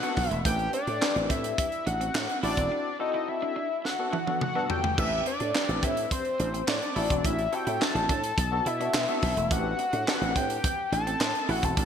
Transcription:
Already playing: analog synth lead F#5
0.02 tine electric piano B3 D4 F#4 A4, clean electric guitar B3, closed hi-hat
0.17 slap bass B1, muted clean electric guitar stroke, kick, open hi-hat
0.30 slap bass E1, clean electric guitar A3, analog synth lead E5, closed hi-hat
0.45 slap bass A1, clean electric guitar A3, tine electric piano C4 D4 G4 B4, analog synth lead G5, kick, closed hi-hat
0.59 closed hi-hat
0.73 analog synth lead D5, muted clean electric guitar stroke, closed hi-hat
0.87 slap bass A2, clean electric guitar D4, closed hi-hat
1.01 tine electric piano C4 D4 G4 B4, muted clean electric guitar stroke, snare, clap
1.16 slap bass A1, clean electric guitar C4, closed hi-hat
1.30 slap bass A2, clean electric guitar C4, analog synth lead E5, kick, closed hi-hat
1.44 closed hi-hat
1.58 analog synth lead E5, muted clean electric guitar stroke, kick, closed hi-hat
1.72 closed hi-hat
1.86 slap bass A1, clean electric guitar D4, analog synth lead F#5, closed hi-hat
2.01 clean electric guitar C4, closed hi-hat
2.15 slap bass A2, muted clean electric guitar stroke, snare, clap
2.29 closed hi-hat
2.43 slap bass A1, tine electric piano C4 E4 F#4 A4, clean electric guitar E4, analog synth lead D5, open hi-hat
2.57 slap bass E1, clean electric guitar C4, kick, closed hi-hat
2.72 clean electric guitar D4
2.99 tine electric piano C4 E4 F#4 A4, analog synth lead D#5, muted clean electric guitar stroke
3.14 clean electric guitar E4
3.28 analog synth lead E5, muted clean electric guitar stroke
3.42 clean electric guitar D4
3.56 clean electric guitar D4
3.85 analog synth lead F#5, muted clean electric guitar stroke, snare
3.99 tine electric piano B3 D4 F#4 A4
4.13 clean electric guitar E4, high tom
4.27 tine electric piano B3 D4 F#4 A4, clean electric guitar D4, high tom
4.41 analog synth lead F#5, mid tom
4.55 tine electric piano G2 B3 D4 F#4 A4, clean electric guitar B3
4.70 analog synth lead G5, muted clean electric guitar stroke, floor tom
4.84 clean electric guitar A3, floor tom
4.98 slap bass A1, clean electric guitar A3, tine electric piano C4 D4 G4 B4, analog synth lead E5, kick, crash
5.26 analog synth lead D5, muted clean electric guitar stroke, closed hi-hat
5.40 slap bass A2, clean electric guitar D4, closed hi-hat
5.54 tine electric piano C4 D4 G4 B4, muted clean electric guitar stroke, snare, clap
5.69 slap bass A1, clean electric guitar C4, closed hi-hat
5.83 slap bass A2, clean electric guitar C4, analog synth lead E5, kick, closed hi-hat
5.97 closed hi-hat
6.11 analog synth lead C5, muted clean electric guitar stroke, kick, closed hi-hat
6.25 closed hi-hat
6.40 slap bass A1, clean electric guitar D4, closed hi-hat
6.54 clean electric guitar C4, closed hi-hat
6.68 slap bass A2, analog synth lead D5, muted clean electric guitar stroke, snare, clap
6.82 closed hi-hat
6.96 slap bass A1, tine electric piano C4 E4 F#4 A4, clean electric guitar E4, open hi-hat
7.10 slap bass E1, clean electric guitar C4, kick, closed hi-hat
7.24 slap bass A1, clean electric guitar D4, analog synth lead E5, kick, closed hi-hat
7.39 closed hi-hat
7.52 tine electric piano C4 E4 F#4 A4, analog synth lead G5, muted clean electric guitar stroke, closed hi-hat
7.67 slap bass A2, clean electric guitar E4, closed hi-hat
7.81 analog synth lead A5, muted clean electric guitar stroke, snare, clap
7.95 slap bass A1, clean electric guitar D4, closed hi-hat
8.09 slap bass A2, clean electric guitar D4, kick, closed hi-hat
8.24 closed hi-hat
8.38 slap bass B1, muted clean electric guitar stroke, kick, closed hi-hat
8.51 tine electric piano B3 D4 F#4 A4
8.66 slap bass B2, clean electric guitar E4, analog synth lead E5, closed hi-hat
8.80 tine electric piano B3 D4 F#4 A4, clean electric guitar D4, closed hi-hat
8.94 slap bass B2, snare, clap
9.08 tine electric piano B3 D4 F#4 A4, clean electric guitar B3, closed hi-hat
9.22 slap bass B1, muted clean electric guitar stroke, kick, open hi-hat
9.37 slap bass E1, clean electric guitar A3, closed hi-hat
9.50 slap bass A1, clean electric guitar A3, tine electric piano C4 D4 G4 B4, analog synth lead F#5, kick, closed hi-hat
9.79 muted clean electric guitar stroke, closed hi-hat
9.93 slap bass A2, clean electric guitar D4, closed hi-hat
10.07 tine electric piano C4 D4 G4 A4, muted clean electric guitar stroke, snare, clap
10.14 tine electric piano B4
10.21 slap bass A1, clean electric guitar C4, closed hi-hat
10.36 slap bass A2, clean electric guitar C4, analog synth lead G5, kick, closed hi-hat
10.50 closed hi-hat
10.64 muted clean electric guitar stroke, kick, closed hi-hat
10.92 slap bass A1, clean electric guitar D4, analog synth lead A5, closed hi-hat
11.07 clean electric guitar C4, closed hi-hat
11.20 slap bass A2, muted clean electric guitar stroke, snare, clap
11.35 closed hi-hat
11.48 slap bass A1, tine electric piano C4 E4 F#4 A4, clean electric guitar E4, analog synth lead F#5, open hi-hat
11.63 slap bass E1, clean electric guitar C4, analog synth lead A5, kick, closed hi-hat
11.77 slap bass A1, clean electric guitar D4, kick, closed hi-hat

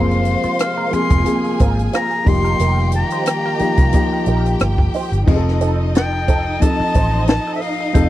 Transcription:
Already playing: fingered electric bass F#1, string section C3 G#3 A#3 F4, grand piano F3 A#3 C4 G#4, clean electric guitar C4 F4 A#4, violin section C5 C6, flute F5
0.11 cross-stick, closed hi-hat
0.25 muted clean electric guitar stroke, closed hi-hat
0.43 clean electric guitar C4 F4 C5, muted fingered electric bass stroke, closed hi-hat
0.59 glockenspiel F6, cross-stick, closed hi-hat
0.78 clean electric guitar C4 F4 A#4
0.91 grand piano F3 A#3 C4 G#4, violin section G#4 G#5, flute C6, muted fingered electric bass stroke, muted clean electric guitar stroke, closed hi-hat
1.10 fingered electric bass F1, muted clean electric guitar stroke, kick, closed hi-hat
1.24 grand piano F3 A#3 C4 G#4, closed hi-hat
1.44 muted clean electric guitar stroke, closed hi-hat
1.59 fingered electric bass G#1, clean electric guitar C4 F4 A#4, kick, closed hi-hat
1.78 muted clean electric guitar stroke, closed hi-hat
1.93 clean electric guitar C4 F4 A#4, flute A#5, cross-stick, closed hi-hat
2.11 closed hi-hat
2.25 fingered electric bass F1, string section D#3 G3 F4, grand piano F3 A#3 D#4 G4, violin section G4 G5, flute C6, muted clean electric guitar stroke, kick, open hi-hat
2.44 clean electric guitar D#4 G4 A#4, closed hi-hat
2.59 fingered electric bass F1, clean electric guitar D#4 G4 A#4, closed hi-hat
2.79 cross-stick
2.92 flute A#5, muted clean electric guitar stroke, closed hi-hat
3.10 clean electric guitar D#4 G4 C5, closed hi-hat
3.26 cross-stick, closed hi-hat
3.46 clean electric guitar D#4 G4 A#4
3.59 grand piano F3 A#3 D#4 G4, muted fingered electric bass stroke, closed hi-hat
3.77 fingered electric bass C2, muted clean electric guitar stroke, kick, closed hi-hat
3.92 grand piano F3 A#3 D#4 G4, kick, closed hi-hat
4.13 muted clean electric guitar stroke
4.26 fingered electric bass A#1, clean electric guitar D#4 G4 A#4, closed hi-hat
4.46 cross-stick, closed hi-hat
4.59 fingered electric bass G1, cross-stick, closed hi-hat
4.78 muted clean electric guitar stroke, kick
4.94 clean electric guitar D#4 G4 C5, open hi-hat
5.12 fingered electric bass G1, muted clean electric guitar stroke, closed hi-hat
5.27 fingered electric bass F1, grand piano F3 C4 D#4 G#4, violin section D#4 D#5, kick, crash
5.36 grand piano A4
5.48 snare
5.61 clean electric guitar C4 D#4 A4, closed hi-hat
5.95 flute G5, glockenspiel A6, snare, closed hi-hat
6.13 muted clean electric guitar stroke
6.28 clean electric guitar C4 D#4 A4, kick, closed hi-hat
6.47 muted clean electric guitar stroke
6.60 grand piano F3 C4 D#4 A4, flute A5, muted clean electric guitar stroke, kick, closed hi-hat
6.80 muted fingered electric bass stroke, muted clean electric guitar stroke
6.94 fingered electric bass A1, clean electric guitar C4 D#4 C5, kick, closed hi-hat
7.14 clean electric guitar C4 D#4 C5
7.27 flute A5, snare, closed hi-hat
7.47 clean electric guitar C4 D#4 A4
7.55 flute E5
7.61 flute F5, muted clean electric guitar stroke, open hi-hat
7.81 muted clean electric guitar stroke
7.93 fingered electric bass F1, grand piano F3 C4 D#4 A4, glockenspiel G6, kick, closed hi-hat

